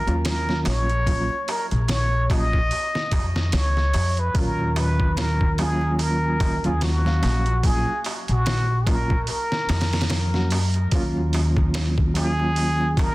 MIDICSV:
0, 0, Header, 1, 6, 480
1, 0, Start_track
1, 0, Key_signature, -6, "minor"
1, 0, Tempo, 821918
1, 624, Time_signature, 4, 2, 24, 8
1, 7678, End_track
2, 0, Start_track
2, 0, Title_t, "Muted trumpet"
2, 0, Program_c, 0, 59
2, 0, Note_on_c, 0, 70, 92
2, 152, Note_off_c, 0, 70, 0
2, 159, Note_on_c, 0, 70, 86
2, 396, Note_on_c, 0, 73, 105
2, 405, Note_off_c, 0, 70, 0
2, 870, Note_off_c, 0, 73, 0
2, 877, Note_on_c, 0, 70, 81
2, 970, Note_off_c, 0, 70, 0
2, 1115, Note_on_c, 0, 73, 95
2, 1354, Note_on_c, 0, 75, 106
2, 1363, Note_off_c, 0, 73, 0
2, 1924, Note_off_c, 0, 75, 0
2, 2072, Note_on_c, 0, 73, 91
2, 2447, Note_on_c, 0, 71, 87
2, 2456, Note_off_c, 0, 73, 0
2, 2555, Note_on_c, 0, 70, 93
2, 2564, Note_off_c, 0, 71, 0
2, 2796, Note_on_c, 0, 71, 84
2, 2805, Note_off_c, 0, 70, 0
2, 3036, Note_on_c, 0, 70, 85
2, 3045, Note_off_c, 0, 71, 0
2, 3270, Note_off_c, 0, 70, 0
2, 3273, Note_on_c, 0, 68, 78
2, 3512, Note_on_c, 0, 70, 91
2, 3520, Note_off_c, 0, 68, 0
2, 3892, Note_on_c, 0, 68, 76
2, 3901, Note_off_c, 0, 70, 0
2, 3992, Note_on_c, 0, 66, 81
2, 4001, Note_off_c, 0, 68, 0
2, 4473, Note_on_c, 0, 68, 88
2, 4481, Note_off_c, 0, 66, 0
2, 4676, Note_off_c, 0, 68, 0
2, 4854, Note_on_c, 0, 66, 89
2, 5186, Note_on_c, 0, 70, 79
2, 5195, Note_off_c, 0, 66, 0
2, 5423, Note_off_c, 0, 70, 0
2, 5426, Note_on_c, 0, 70, 84
2, 5882, Note_off_c, 0, 70, 0
2, 7112, Note_on_c, 0, 68, 100
2, 7588, Note_on_c, 0, 70, 119
2, 7597, Note_off_c, 0, 68, 0
2, 7678, Note_off_c, 0, 70, 0
2, 7678, End_track
3, 0, Start_track
3, 0, Title_t, "Reed electric piano"
3, 0, Program_c, 1, 4
3, 38, Note_on_c, 1, 54, 79
3, 42, Note_on_c, 1, 58, 74
3, 46, Note_on_c, 1, 61, 76
3, 49, Note_on_c, 1, 65, 91
3, 247, Note_off_c, 1, 54, 0
3, 249, Note_off_c, 1, 58, 0
3, 251, Note_off_c, 1, 61, 0
3, 252, Note_off_c, 1, 65, 0
3, 281, Note_on_c, 1, 54, 69
3, 284, Note_on_c, 1, 58, 63
3, 288, Note_on_c, 1, 61, 65
3, 293, Note_on_c, 1, 65, 79
3, 501, Note_off_c, 1, 54, 0
3, 503, Note_off_c, 1, 58, 0
3, 505, Note_off_c, 1, 61, 0
3, 507, Note_off_c, 1, 65, 0
3, 622, Note_on_c, 1, 54, 68
3, 627, Note_on_c, 1, 58, 59
3, 630, Note_on_c, 1, 61, 60
3, 634, Note_on_c, 1, 65, 76
3, 777, Note_off_c, 1, 54, 0
3, 780, Note_off_c, 1, 58, 0
3, 781, Note_off_c, 1, 61, 0
3, 783, Note_off_c, 1, 65, 0
3, 1342, Note_on_c, 1, 54, 70
3, 1346, Note_on_c, 1, 58, 63
3, 1351, Note_on_c, 1, 61, 62
3, 1353, Note_on_c, 1, 65, 74
3, 1497, Note_off_c, 1, 54, 0
3, 1499, Note_off_c, 1, 58, 0
3, 1502, Note_off_c, 1, 61, 0
3, 1503, Note_off_c, 1, 65, 0
3, 2536, Note_on_c, 1, 54, 88
3, 2542, Note_on_c, 1, 46, 79
3, 2551, Note_on_c, 1, 61, 80
3, 2560, Note_on_c, 1, 65, 94
3, 3236, Note_off_c, 1, 54, 0
3, 3239, Note_off_c, 1, 46, 0
3, 3243, Note_off_c, 1, 61, 0
3, 3248, Note_off_c, 1, 65, 0
3, 3260, Note_on_c, 1, 54, 78
3, 3267, Note_on_c, 1, 58, 71
3, 3274, Note_on_c, 1, 61, 73
3, 3284, Note_on_c, 1, 65, 89
3, 3847, Note_off_c, 1, 54, 0
3, 3851, Note_off_c, 1, 58, 0
3, 3854, Note_off_c, 1, 61, 0
3, 3859, Note_off_c, 1, 65, 0
3, 3876, Note_on_c, 1, 54, 83
3, 3882, Note_on_c, 1, 58, 77
3, 3886, Note_on_c, 1, 61, 74
3, 3890, Note_on_c, 1, 65, 91
3, 4086, Note_off_c, 1, 54, 0
3, 4089, Note_off_c, 1, 58, 0
3, 4091, Note_off_c, 1, 61, 0
3, 4093, Note_off_c, 1, 65, 0
3, 4116, Note_on_c, 1, 54, 70
3, 4122, Note_on_c, 1, 58, 66
3, 4127, Note_on_c, 1, 61, 64
3, 4130, Note_on_c, 1, 77, 79
3, 4339, Note_off_c, 1, 54, 0
3, 4342, Note_off_c, 1, 58, 0
3, 4344, Note_off_c, 1, 61, 0
3, 4346, Note_off_c, 1, 77, 0
3, 4463, Note_on_c, 1, 54, 65
3, 4465, Note_on_c, 1, 58, 61
3, 4471, Note_on_c, 1, 61, 61
3, 4474, Note_on_c, 1, 65, 78
3, 4618, Note_off_c, 1, 54, 0
3, 4619, Note_off_c, 1, 58, 0
3, 4622, Note_off_c, 1, 61, 0
3, 4623, Note_off_c, 1, 65, 0
3, 5173, Note_on_c, 1, 54, 73
3, 5177, Note_on_c, 1, 58, 61
3, 5182, Note_on_c, 1, 61, 63
3, 5187, Note_on_c, 1, 65, 79
3, 5333, Note_off_c, 1, 54, 0
3, 5335, Note_off_c, 1, 58, 0
3, 5337, Note_off_c, 1, 61, 0
3, 5340, Note_off_c, 1, 65, 0
3, 6031, Note_on_c, 1, 54, 73
3, 6037, Note_on_c, 1, 58, 65
3, 6041, Note_on_c, 1, 61, 66
3, 6044, Note_on_c, 1, 66, 80
3, 6161, Note_off_c, 1, 54, 0
3, 6163, Note_off_c, 1, 58, 0
3, 6165, Note_off_c, 1, 61, 0
3, 6167, Note_off_c, 1, 66, 0
3, 6376, Note_on_c, 1, 54, 87
3, 6383, Note_on_c, 1, 58, 81
3, 6392, Note_on_c, 1, 61, 86
3, 6398, Note_on_c, 1, 65, 103
3, 7076, Note_off_c, 1, 54, 0
3, 7079, Note_off_c, 1, 58, 0
3, 7083, Note_off_c, 1, 61, 0
3, 7087, Note_off_c, 1, 65, 0
3, 7091, Note_on_c, 1, 54, 82
3, 7100, Note_on_c, 1, 58, 81
3, 7106, Note_on_c, 1, 61, 78
3, 7115, Note_on_c, 1, 65, 87
3, 7678, Note_off_c, 1, 54, 0
3, 7678, Note_off_c, 1, 58, 0
3, 7678, Note_off_c, 1, 61, 0
3, 7678, Note_off_c, 1, 65, 0
3, 7678, End_track
4, 0, Start_track
4, 0, Title_t, "Upright bass"
4, 0, Program_c, 2, 32
4, 44, Note_on_c, 2, 39, 81
4, 366, Note_off_c, 2, 39, 0
4, 386, Note_on_c, 2, 34, 87
4, 737, Note_off_c, 2, 34, 0
4, 1003, Note_on_c, 2, 34, 87
4, 1565, Note_off_c, 2, 34, 0
4, 1822, Note_on_c, 2, 41, 72
4, 2061, Note_off_c, 2, 41, 0
4, 2064, Note_on_c, 2, 37, 83
4, 2280, Note_off_c, 2, 37, 0
4, 2305, Note_on_c, 2, 41, 84
4, 2520, Note_off_c, 2, 41, 0
4, 2538, Note_on_c, 2, 39, 89
4, 3853, Note_off_c, 2, 39, 0
4, 3882, Note_on_c, 2, 39, 82
4, 4205, Note_off_c, 2, 39, 0
4, 4227, Note_on_c, 2, 34, 91
4, 4577, Note_off_c, 2, 34, 0
4, 4841, Note_on_c, 2, 34, 90
4, 5404, Note_off_c, 2, 34, 0
4, 5663, Note_on_c, 2, 41, 78
4, 6143, Note_off_c, 2, 41, 0
4, 6143, Note_on_c, 2, 42, 90
4, 6359, Note_off_c, 2, 42, 0
4, 6377, Note_on_c, 2, 39, 94
4, 7678, Note_off_c, 2, 39, 0
4, 7678, End_track
5, 0, Start_track
5, 0, Title_t, "Darbuka"
5, 42, Note_on_c, 9, 63, 33
5, 100, Note_off_c, 9, 63, 0
5, 148, Note_on_c, 9, 63, 43
5, 206, Note_off_c, 9, 63, 0
5, 285, Note_on_c, 9, 63, 25
5, 343, Note_off_c, 9, 63, 0
5, 380, Note_on_c, 9, 63, 73
5, 439, Note_off_c, 9, 63, 0
5, 527, Note_on_c, 9, 63, 32
5, 585, Note_off_c, 9, 63, 0
5, 626, Note_on_c, 9, 63, 51
5, 684, Note_off_c, 9, 63, 0
5, 759, Note_on_c, 9, 63, 25
5, 817, Note_off_c, 9, 63, 0
5, 867, Note_on_c, 9, 63, 80
5, 926, Note_off_c, 9, 63, 0
5, 1000, Note_on_c, 9, 63, 39
5, 1058, Note_off_c, 9, 63, 0
5, 1099, Note_on_c, 9, 63, 47
5, 1157, Note_off_c, 9, 63, 0
5, 1244, Note_on_c, 9, 63, 23
5, 1302, Note_off_c, 9, 63, 0
5, 1347, Note_on_c, 9, 63, 95
5, 1406, Note_off_c, 9, 63, 0
5, 1488, Note_on_c, 9, 63, 35
5, 1546, Note_off_c, 9, 63, 0
5, 1589, Note_on_c, 9, 63, 49
5, 1647, Note_off_c, 9, 63, 0
5, 1726, Note_on_c, 9, 63, 26
5, 1784, Note_off_c, 9, 63, 0
5, 1825, Note_on_c, 9, 63, 85
5, 1884, Note_off_c, 9, 63, 0
5, 1960, Note_on_c, 9, 63, 34
5, 2018, Note_off_c, 9, 63, 0
5, 2068, Note_on_c, 9, 63, 47
5, 2127, Note_off_c, 9, 63, 0
5, 2207, Note_on_c, 9, 63, 25
5, 2266, Note_off_c, 9, 63, 0
5, 2301, Note_on_c, 9, 63, 78
5, 2360, Note_off_c, 9, 63, 0
5, 2445, Note_on_c, 9, 63, 31
5, 2504, Note_off_c, 9, 63, 0
5, 2540, Note_on_c, 9, 63, 47
5, 2599, Note_off_c, 9, 63, 0
5, 2681, Note_on_c, 9, 63, 24
5, 2739, Note_off_c, 9, 63, 0
5, 2781, Note_on_c, 9, 63, 83
5, 2839, Note_off_c, 9, 63, 0
5, 2924, Note_on_c, 9, 63, 38
5, 2982, Note_off_c, 9, 63, 0
5, 3018, Note_on_c, 9, 63, 42
5, 3077, Note_off_c, 9, 63, 0
5, 3161, Note_on_c, 9, 63, 22
5, 3220, Note_off_c, 9, 63, 0
5, 3262, Note_on_c, 9, 63, 82
5, 3321, Note_off_c, 9, 63, 0
5, 3395, Note_on_c, 9, 63, 35
5, 3454, Note_off_c, 9, 63, 0
5, 3497, Note_on_c, 9, 63, 50
5, 3556, Note_off_c, 9, 63, 0
5, 3644, Note_on_c, 9, 63, 25
5, 3703, Note_off_c, 9, 63, 0
5, 3740, Note_on_c, 9, 63, 76
5, 3799, Note_off_c, 9, 63, 0
5, 3881, Note_on_c, 9, 63, 32
5, 3939, Note_off_c, 9, 63, 0
5, 3983, Note_on_c, 9, 63, 47
5, 4041, Note_off_c, 9, 63, 0
5, 4128, Note_on_c, 9, 63, 24
5, 4187, Note_off_c, 9, 63, 0
5, 4221, Note_on_c, 9, 63, 74
5, 4280, Note_off_c, 9, 63, 0
5, 4358, Note_on_c, 9, 63, 34
5, 4416, Note_off_c, 9, 63, 0
5, 4465, Note_on_c, 9, 63, 45
5, 4523, Note_off_c, 9, 63, 0
5, 4608, Note_on_c, 9, 63, 23
5, 4666, Note_off_c, 9, 63, 0
5, 4707, Note_on_c, 9, 63, 75
5, 4766, Note_off_c, 9, 63, 0
5, 4846, Note_on_c, 9, 63, 33
5, 4904, Note_off_c, 9, 63, 0
5, 4945, Note_on_c, 9, 63, 42
5, 5004, Note_off_c, 9, 63, 0
5, 5085, Note_on_c, 9, 63, 21
5, 5143, Note_off_c, 9, 63, 0
5, 5180, Note_on_c, 9, 63, 82
5, 5239, Note_off_c, 9, 63, 0
5, 5321, Note_on_c, 9, 63, 36
5, 5379, Note_off_c, 9, 63, 0
5, 5421, Note_on_c, 9, 63, 47
5, 5479, Note_off_c, 9, 63, 0
5, 5560, Note_on_c, 9, 63, 22
5, 5619, Note_off_c, 9, 63, 0
5, 5662, Note_on_c, 9, 63, 80
5, 5721, Note_off_c, 9, 63, 0
5, 5800, Note_on_c, 9, 63, 30
5, 5859, Note_off_c, 9, 63, 0
5, 5896, Note_on_c, 9, 63, 47
5, 5954, Note_off_c, 9, 63, 0
5, 6037, Note_on_c, 9, 63, 22
5, 6095, Note_off_c, 9, 63, 0
5, 6143, Note_on_c, 9, 63, 74
5, 6201, Note_off_c, 9, 63, 0
5, 6281, Note_on_c, 9, 63, 31
5, 6340, Note_off_c, 9, 63, 0
5, 6386, Note_on_c, 9, 63, 46
5, 6444, Note_off_c, 9, 63, 0
5, 6523, Note_on_c, 9, 63, 22
5, 6581, Note_off_c, 9, 63, 0
5, 6625, Note_on_c, 9, 63, 69
5, 6683, Note_off_c, 9, 63, 0
5, 6764, Note_on_c, 9, 63, 35
5, 6822, Note_off_c, 9, 63, 0
5, 6864, Note_on_c, 9, 63, 39
5, 6922, Note_off_c, 9, 63, 0
5, 7007, Note_on_c, 9, 63, 22
5, 7065, Note_off_c, 9, 63, 0
5, 7103, Note_on_c, 9, 63, 69
5, 7162, Note_off_c, 9, 63, 0
5, 7238, Note_on_c, 9, 63, 36
5, 7297, Note_off_c, 9, 63, 0
5, 7344, Note_on_c, 9, 63, 45
5, 7402, Note_off_c, 9, 63, 0
5, 7480, Note_on_c, 9, 63, 24
5, 7539, Note_off_c, 9, 63, 0
5, 7587, Note_on_c, 9, 63, 75
5, 7645, Note_off_c, 9, 63, 0
5, 7678, End_track
6, 0, Start_track
6, 0, Title_t, "Drums"
6, 44, Note_on_c, 9, 42, 35
6, 102, Note_off_c, 9, 42, 0
6, 145, Note_on_c, 9, 46, 77
6, 149, Note_on_c, 9, 38, 102
6, 203, Note_off_c, 9, 46, 0
6, 207, Note_off_c, 9, 38, 0
6, 285, Note_on_c, 9, 38, 34
6, 344, Note_off_c, 9, 38, 0
6, 383, Note_on_c, 9, 46, 63
6, 388, Note_on_c, 9, 38, 43
6, 442, Note_off_c, 9, 46, 0
6, 446, Note_off_c, 9, 38, 0
6, 523, Note_on_c, 9, 42, 37
6, 581, Note_off_c, 9, 42, 0
6, 622, Note_on_c, 9, 36, 96
6, 625, Note_on_c, 9, 46, 77
6, 681, Note_off_c, 9, 36, 0
6, 684, Note_off_c, 9, 46, 0
6, 864, Note_on_c, 9, 46, 55
6, 922, Note_off_c, 9, 46, 0
6, 1001, Note_on_c, 9, 42, 39
6, 1059, Note_off_c, 9, 42, 0
6, 1101, Note_on_c, 9, 46, 76
6, 1105, Note_on_c, 9, 38, 101
6, 1159, Note_off_c, 9, 46, 0
6, 1163, Note_off_c, 9, 38, 0
6, 1342, Note_on_c, 9, 36, 88
6, 1343, Note_on_c, 9, 46, 59
6, 1400, Note_off_c, 9, 36, 0
6, 1402, Note_off_c, 9, 46, 0
6, 1480, Note_on_c, 9, 36, 79
6, 1538, Note_off_c, 9, 36, 0
6, 1582, Note_on_c, 9, 46, 73
6, 1641, Note_off_c, 9, 46, 0
6, 1724, Note_on_c, 9, 38, 43
6, 1782, Note_off_c, 9, 38, 0
6, 1819, Note_on_c, 9, 46, 59
6, 1820, Note_on_c, 9, 36, 82
6, 1877, Note_off_c, 9, 46, 0
6, 1879, Note_off_c, 9, 36, 0
6, 1962, Note_on_c, 9, 38, 45
6, 2020, Note_off_c, 9, 38, 0
6, 2057, Note_on_c, 9, 46, 73
6, 2061, Note_on_c, 9, 38, 96
6, 2116, Note_off_c, 9, 46, 0
6, 2120, Note_off_c, 9, 38, 0
6, 2201, Note_on_c, 9, 38, 30
6, 2260, Note_off_c, 9, 38, 0
6, 2298, Note_on_c, 9, 46, 74
6, 2356, Note_off_c, 9, 46, 0
6, 2437, Note_on_c, 9, 42, 40
6, 2495, Note_off_c, 9, 42, 0
6, 2539, Note_on_c, 9, 36, 101
6, 2539, Note_on_c, 9, 46, 76
6, 2597, Note_off_c, 9, 46, 0
6, 2598, Note_off_c, 9, 36, 0
6, 2781, Note_on_c, 9, 46, 58
6, 2840, Note_off_c, 9, 46, 0
6, 2918, Note_on_c, 9, 36, 86
6, 2976, Note_off_c, 9, 36, 0
6, 3020, Note_on_c, 9, 46, 71
6, 3024, Note_on_c, 9, 38, 94
6, 3079, Note_off_c, 9, 46, 0
6, 3083, Note_off_c, 9, 38, 0
6, 3158, Note_on_c, 9, 36, 81
6, 3217, Note_off_c, 9, 36, 0
6, 3260, Note_on_c, 9, 46, 59
6, 3318, Note_off_c, 9, 46, 0
6, 3499, Note_on_c, 9, 46, 73
6, 3558, Note_off_c, 9, 46, 0
6, 3739, Note_on_c, 9, 36, 81
6, 3739, Note_on_c, 9, 46, 59
6, 3797, Note_off_c, 9, 36, 0
6, 3797, Note_off_c, 9, 46, 0
6, 3878, Note_on_c, 9, 42, 39
6, 3937, Note_off_c, 9, 42, 0
6, 3978, Note_on_c, 9, 46, 81
6, 3982, Note_on_c, 9, 38, 102
6, 4037, Note_off_c, 9, 46, 0
6, 4041, Note_off_c, 9, 38, 0
6, 4124, Note_on_c, 9, 38, 33
6, 4182, Note_off_c, 9, 38, 0
6, 4221, Note_on_c, 9, 46, 60
6, 4225, Note_on_c, 9, 38, 42
6, 4279, Note_off_c, 9, 46, 0
6, 4283, Note_off_c, 9, 38, 0
6, 4356, Note_on_c, 9, 42, 37
6, 4414, Note_off_c, 9, 42, 0
6, 4459, Note_on_c, 9, 36, 94
6, 4459, Note_on_c, 9, 46, 83
6, 4517, Note_off_c, 9, 36, 0
6, 4517, Note_off_c, 9, 46, 0
6, 4698, Note_on_c, 9, 46, 58
6, 4757, Note_off_c, 9, 46, 0
6, 4837, Note_on_c, 9, 42, 40
6, 4895, Note_off_c, 9, 42, 0
6, 4940, Note_on_c, 9, 46, 70
6, 4944, Note_on_c, 9, 38, 98
6, 4999, Note_off_c, 9, 46, 0
6, 5003, Note_off_c, 9, 38, 0
6, 5178, Note_on_c, 9, 36, 89
6, 5179, Note_on_c, 9, 46, 64
6, 5236, Note_off_c, 9, 36, 0
6, 5238, Note_off_c, 9, 46, 0
6, 5315, Note_on_c, 9, 36, 86
6, 5373, Note_off_c, 9, 36, 0
6, 5414, Note_on_c, 9, 46, 75
6, 5472, Note_off_c, 9, 46, 0
6, 5559, Note_on_c, 9, 38, 43
6, 5617, Note_off_c, 9, 38, 0
6, 5657, Note_on_c, 9, 46, 60
6, 5661, Note_on_c, 9, 38, 77
6, 5716, Note_off_c, 9, 46, 0
6, 5720, Note_off_c, 9, 38, 0
6, 5728, Note_on_c, 9, 46, 62
6, 5732, Note_on_c, 9, 38, 80
6, 5786, Note_off_c, 9, 46, 0
6, 5790, Note_off_c, 9, 38, 0
6, 5797, Note_on_c, 9, 46, 56
6, 5802, Note_on_c, 9, 38, 76
6, 5845, Note_off_c, 9, 46, 0
6, 5845, Note_on_c, 9, 46, 57
6, 5849, Note_off_c, 9, 38, 0
6, 5849, Note_on_c, 9, 38, 81
6, 5896, Note_off_c, 9, 46, 0
6, 5896, Note_on_c, 9, 46, 81
6, 5900, Note_off_c, 9, 38, 0
6, 5900, Note_on_c, 9, 38, 100
6, 5954, Note_off_c, 9, 46, 0
6, 5958, Note_off_c, 9, 38, 0
6, 6039, Note_on_c, 9, 38, 32
6, 6097, Note_off_c, 9, 38, 0
6, 6135, Note_on_c, 9, 46, 70
6, 6193, Note_off_c, 9, 46, 0
6, 6273, Note_on_c, 9, 42, 39
6, 6331, Note_off_c, 9, 42, 0
6, 6374, Note_on_c, 9, 46, 78
6, 6376, Note_on_c, 9, 36, 93
6, 6433, Note_off_c, 9, 46, 0
6, 6435, Note_off_c, 9, 36, 0
6, 6617, Note_on_c, 9, 46, 58
6, 6675, Note_off_c, 9, 46, 0
6, 6754, Note_on_c, 9, 36, 88
6, 6813, Note_off_c, 9, 36, 0
6, 6856, Note_on_c, 9, 46, 73
6, 6860, Note_on_c, 9, 38, 104
6, 6914, Note_off_c, 9, 46, 0
6, 6919, Note_off_c, 9, 38, 0
6, 6995, Note_on_c, 9, 36, 85
6, 7053, Note_off_c, 9, 36, 0
6, 7096, Note_on_c, 9, 46, 64
6, 7155, Note_off_c, 9, 46, 0
6, 7336, Note_on_c, 9, 46, 77
6, 7395, Note_off_c, 9, 46, 0
6, 7575, Note_on_c, 9, 36, 88
6, 7575, Note_on_c, 9, 46, 60
6, 7634, Note_off_c, 9, 36, 0
6, 7634, Note_off_c, 9, 46, 0
6, 7678, End_track
0, 0, End_of_file